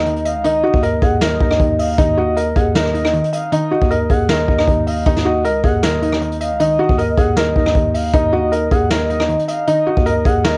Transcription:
Already playing: D#2 D#4 D#5
0.06 D#3, closed hi-hat
0.16 closed hi-hat
0.25 D#5 F5, closed hi-hat
0.35 C#2
0.44 D#3 D#4 D#5, closed hi-hat
0.64 D#4 F#4
0.74 D#2, kick
0.83 A#4 D#5, closed hi-hat
1.02 D#2 G#4 F#5, kick, closed hi-hat
1.21 D#3 A#4 D#5, snare, closed hi-hat
1.40 D#2 D#4, kick
1.51 D#4, cross-stick
1.60 D#2 D#3, kick, closed hi-hat
1.79 D#5 F5, open hi-hat
1.98 D#2 D#3 D#4 D#5, kick, closed hi-hat
2.17 D#4 F#4
2.37 A#4 D#5, closed hi-hat
2.56 D#2 G#4 F#5, kick, closed hi-hat
2.75 D#3 A#4 D#5, snare, closed hi-hat
2.85 cross-stick
2.94 D#4, closed hi-hat
3.05 D#4, cross-stick
3.14 D#3, closed hi-hat
3.24 closed hi-hat
3.33 D#5 F5, closed hi-hat
3.52 D#3 D#4 D#5, closed hi-hat
3.71 D#4 F#4
3.82 D#2, kick
3.91 A#4 D#5, closed hi-hat
4.10 D#2 G#4 F#5, kick, closed hi-hat
4.29 D#3 A#4 D#5, snare, closed hi-hat
4.48 D#2 D#4, kick
4.59 D#4, cross-stick
4.67 D#2 D#3, kick, closed hi-hat
4.86 D#5 F5, open hi-hat
5.06 D#2 D#3 D#4 D#5, kick, closed hi-hat
5.16 snare
5.25 D#4 F#4
5.44 C#2 A#4 D#5, closed hi-hat
5.64 D#2 G#4 F#5, kick, closed hi-hat
5.82 D#3 A#4 D#5, snare, closed hi-hat
6.02 D#4, closed hi-hat
6.12 D#4, cross-stick
6.21 D#3, closed hi-hat
6.32 closed hi-hat
6.41 D#5 F5, closed hi-hat
6.51 C#2
6.60 D#3 D#4 D#5, closed hi-hat
6.79 D#4 F#4
6.89 D#2, kick
6.98 A#4 D#5, closed hi-hat
7.17 D#2 G#4 F#5, kick, closed hi-hat
7.37 D#3 A#4 D#5, snare, closed hi-hat
7.56 D#2 D#4, kick
7.66 D#4, cross-stick
7.75 D#2 D#3, kick, closed hi-hat
7.94 D#5 F5, open hi-hat
8.14 D#2 D#3 D#4 D#5, kick, closed hi-hat
8.33 D#4 F#4
8.52 A#4 D#5, closed hi-hat
8.71 D#2 G#4 F#5, kick, closed hi-hat
8.91 D#3 A#4 D#5, snare, closed hi-hat
9.10 D#4, closed hi-hat
9.20 D#4, cross-stick
9.29 D#3, closed hi-hat
9.39 closed hi-hat
9.48 D#5 F5, closed hi-hat
9.67 D#3 D#4 D#5, closed hi-hat
9.87 D#4 F#4
9.97 D#2, kick
10.06 A#4 D#5, closed hi-hat
10.25 D#2 G#4 F#5, kick, closed hi-hat
10.44 D#3 A#4 D#5, snare, closed hi-hat

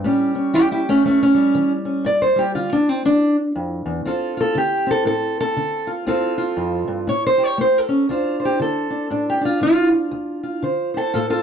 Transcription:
0.04 A2 G3 C#4 G4
0.35 C#4
0.54 E3 E4 G4
0.72 E4 G4
0.89 A3 C#4
1.04 E2 A3 C#4
1.23 C#4
1.34 G3
1.55 E3
1.85 C#4
2.04 G2 D5
2.22 C5
2.36 G3 G4
2.55 D3 F4
2.73 D4
2.89 C4
3.05 D3 D4
3.55 F2
3.86 E2
4.05 D2 C4 F4 A4
4.37 F4 A4
4.55 D3 G4
4.87 C4
4.91 A4
5.05 A2 A4
5.41 A4
5.57 D3
5.87 F4
6.07 D2 C4 F4 A4
6.38 F4
6.57 F2
6.88 G2
7.07 A2 C#5
7.27 C5
7.38 G4
7.44 C#5
7.58 A3 C5
7.78 A4
7.89 C#4
8.09 D2 D4 F4 C5
8.40 C5
8.45 G4
8.60 D3 A4
8.90 D4
9.10 A2 D4
9.30 G4
9.41 D4
9.45 F4
9.61 D3 F4
9.92 F4
10.11 D2
10.43 F4
10.62 D3 C5
10.94 A4 C5
11.14 A2 F4 A4
11.30 F4 A4

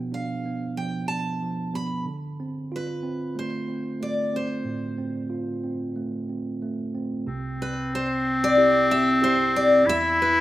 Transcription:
Already playing: B2 F3 B3
0.12 D4 F5
0.45 B3
0.77 F3 G5
1.08 B3 A5
1.42 F3
1.74 B3 B5
2.05 D3
2.40 C4
2.72 F4 B4
3.03 C4
3.35 A3 C5
3.68 C4
4.00 A3 D5
4.33 C4 C5
4.65 A2
4.98 C4
5.30 F4
5.64 C4
5.96 A3
6.29 C4
6.62 A3
6.94 C4
7.27 C2 C3 C4
7.62 B4
7.95 C5
8.44 D5
8.57 C4 E4 G4
8.91 E5
9.22 C4 E4 G4 C5
9.56 D5
9.86 E2 E4 E5
10.22 B4

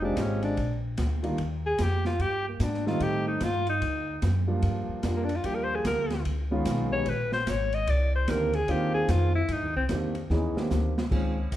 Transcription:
Already playing: F1
0.02 G#3 C4 D4 D#4 F4 G4
0.17 G#1, kick, snare, hi-hat pedal, ride
0.21 C#4
0.42 D4, ride
0.57 A#1, kick, ride
0.97 D2, kick, snare, hi-hat pedal, ride
1.23 D#3 G3 A#3 D4 F4, ride
1.38 D#2, kick, ride
1.66 G#4
1.78 F2 G4, kick, snare, hi-hat pedal, ride
2.05 F4, snare
2.19 G2 G4, kick, ride
2.48 A#3
2.60 G#2 D4, kick, snare, hi-hat pedal, ride
2.74 snare
2.86 D#3 G3 A3 C4 D#4 F4, snare
3.00 A2 G4, kick, ride
3.28 D#4
3.40 G2 F4, kick, snare, hi-hat pedal, ride
3.67 D#4, ride
3.82 D2, kick, ride
4.22 F#2, kick, snare, hi-hat pedal, ride
4.47 F3 G3 A#3 D4 F4
4.62 G2, kick, ride
4.89 muted upright bass stroke
5.03 F2 F3 G3 A#3 D4 F4, kick, snare, hi-hat pedal, ride
5.16 A#3
5.24 D4
5.29 ride
5.36 F4
5.44 D#2 F3 G3 A#3 D4 G4, kick, ride
5.55 A#4
5.64 C5
5.76 G#4
5.85 D2 A#4, kick, snare, hi-hat pedal, ride
6.10 snare, ride
6.25 C#2, kick, ride
6.51 D#3 G#3 B3 C#4 F4
6.65 B1, kick, snare, hi-hat pedal, ride
6.91 D#3 G#3 B3 C#4 G4 C#5
7.06 A#1 B4, kick, ride
7.32 C5, snare
7.47 G#1 C#5, kick, snare, hi-hat pedal, ride
7.72 D#5, ride
7.87 C2 D5, kick, ride
8.16 C5
8.28 D2 D#3 A#3 C4 D4 G4 A#4, kick, snare, hi-hat pedal, ride
8.53 G#4, ride
8.68 D#2 D#3 A#3 C4 D4 F4 G4, kick, ride
8.94 G#4
9.08 F2 F4, kick, snare, hi-hat pedal, ride
9.35 E4
9.48 G2, kick, ride
9.52 D#4
9.62 D#2
9.76 C2 C4
9.89 E2 D#3 A#3 C4 D4 G4, kick, snare, hi-hat pedal, ride
10.15 ride
10.30 D#2 E3 B3 C#4 D#4 G#4, snare
10.55 D#3 A#3 C4 D4 G4, muted upright bass stroke, snare
10.70 D2, snare, hi-hat pedal
10.98 snare
11.11 C#2 D#3 G#3 C4 C#4 F4, kick, crash
11.52 C2, kick, hi-hat pedal, ride

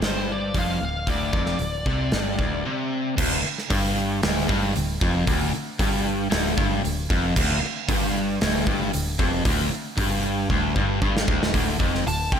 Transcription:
0.02 G1 G2 C5, snare, open hi-hat
0.32 D5
0.54 F1 F2, kick, open hi-hat
0.59 F5
0.81 D1 D2 F5
1.07 D1 D2 D5, kick, open hi-hat
1.33 F1 F2, kick
1.46 snare
1.59 D1 D2, open hi-hat
1.86 C2 C3, kick
2.12 G1 G2, snare, open hi-hat
2.39 D1 D2, kick
2.65 C3
3.17 D1 D2, kick, crash
3.43 muted overdriven electric guitar stroke, muted picked electric bass stroke
3.58 snare
3.70 G1 G2, kick, open hi-hat
4.23 D1 D2, snare, open hi-hat
4.49 G1 G2, kick
4.76 D1 D2, open hi-hat
5.01 F1 F2, kick
5.27 D1 D2, kick, open hi-hat
5.55 muted overdriven electric guitar stroke, muted picked electric bass stroke
5.79 G1 G2, kick, open hi-hat
6.30 D1 D2, snare, open hi-hat
6.57 G1 G2, kick
6.84 D1 D2, open hi-hat
7.10 F1 F2, kick
7.36 D1 D2, kick, crash
7.62 muted overdriven electric guitar stroke, muted picked electric bass stroke
7.89 G1 G2, kick, open hi-hat
8.41 D1 D2, snare, open hi-hat
8.66 G1 G2, kick
8.93 D1 D2, open hi-hat
9.19 F1 F2, kick
9.45 D1 D2, kick, open hi-hat
9.72 muted overdriven electric guitar stroke, muted picked electric bass stroke
9.97 G1 G2, kick, open hi-hat
10.49 D1 D2, kick
10.76 G1 G2, kick
11.02 G1 G2, kick
11.17 snare
11.28 D1 D2, kick
11.43 snare
11.54 D1 D2, kick, open hi-hat
11.79 F1 F2, kick
11.95 snare
12.07 D1 D2 A5, open hi-hat
12.32 C2 C3 G5, kick

